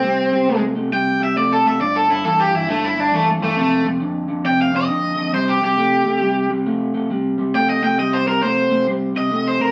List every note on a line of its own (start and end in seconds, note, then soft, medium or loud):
0.00 0.29 C3 medium
0.00 0.29 G3 medium
0.00 0.61 C4 loud
0.32 0.46 C3 medium
0.32 0.46 G3 medium
0.47 0.73 C3 medium
0.47 0.73 A3 medium
0.75 0.90 C3 medium
0.75 0.90 A3 medium
0.91 1.17 C3 medium
0.91 1.17 G3 medium
0.91 1.21 G5 loud
1.20 1.34 C3 medium
1.20 1.35 G3 medium
1.20 1.37 E5 medium
1.36 1.61 C3 medium
1.36 1.62 A3 medium
1.36 1.51 D5 medium
1.53 1.66 A4 medium
1.64 1.79 C3 medium
1.64 1.79 A3 medium
1.64 1.81 E5 medium
1.80 2.05 G2 medium
1.80 2.06 D3 medium
1.80 1.95 D5 loud
1.96 2.10 A4 medium
2.08 2.23 G2 medium
2.08 2.23 D3 medium
2.08 2.24 E4 medium
2.25 2.50 G2 medium
2.25 2.50 E3 medium
2.25 2.39 A4 medium
2.40 2.55 G4 medium
2.51 2.66 G2 medium
2.51 2.67 E3 medium
2.51 2.69 E4 medium
2.68 2.94 G2 medium
2.68 2.94 D3 loud
2.68 2.84 A3 medium
2.85 3.00 E4 medium
2.96 3.11 G2 medium
2.96 3.11 D3 medium
2.96 3.13 D4 medium
3.12 3.38 G2 medium
3.12 3.38 E3 loud
3.12 3.28 A3 medium
3.40 3.55 G2 medium
3.40 3.55 E3 medium
3.40 3.57 A3 loud
3.56 3.82 F2 medium
3.56 3.82 C3 medium
3.56 3.85 A3 loud
3.84 3.99 F2 medium
3.84 3.99 C3 medium
4.00 4.26 F2 medium
4.00 4.26 D3 loud
4.28 4.43 F2 medium
4.28 4.43 D3 medium
4.44 4.70 F2 medium
4.44 4.70 C3 loud
4.44 4.60 G5 loud
4.62 4.75 F5 medium
4.72 4.87 F2 medium
4.72 4.87 C3 medium
4.76 5.33 D#5 medium
4.88 5.14 F2 medium
4.88 5.14 D3 medium
5.16 5.31 F2 medium
5.16 5.32 D3 medium
5.33 5.58 C3 medium
5.33 5.58 G3 medium
5.33 5.48 C5 loud
5.49 5.63 G4 medium
5.61 5.76 C3 medium
5.61 5.76 G3 medium
5.61 6.49 G4 loud
5.77 6.03 C3 medium
5.77 6.03 A3 medium
6.05 6.20 C3 medium
6.05 6.20 A3 medium
6.21 6.47 C3 medium
6.21 6.47 G3 loud
6.49 6.64 C3 medium
6.49 6.64 G3 medium
6.66 6.91 C3 medium
6.66 6.91 A3 loud
6.94 7.08 C3 medium
6.94 7.09 A3 loud
7.10 7.35 C3 medium
7.10 7.35 G3 medium
7.38 7.53 C3 medium
7.38 7.53 G3 medium
7.54 7.79 C3 medium
7.54 7.80 A3 loud
7.54 7.69 G5 loud
7.70 7.84 D#5 loud
7.82 7.97 C3 medium
7.82 7.97 A3 medium
7.82 7.98 G5 medium
7.99 8.24 C3 medium
7.99 8.24 G3 loud
7.99 8.13 D#5 loud
8.13 8.27 C5 medium
8.26 8.41 C3 medium
8.26 8.41 G3 medium
8.26 8.42 A#4 loud
8.43 8.68 C3 medium
8.43 8.68 A3 loud
8.43 8.85 C5 loud
8.71 8.85 C3 medium
8.71 8.86 A3 medium
8.87 9.12 C3 medium
8.87 9.12 G3 medium
9.15 9.29 C3 medium
9.15 9.30 G3 medium
9.15 9.45 D#5 medium
9.31 9.56 C3 medium
9.31 9.56 A3 medium
9.48 9.61 C5 medium
9.59 9.72 C3 medium
9.59 9.72 A3 medium
9.59 9.72 A#4 medium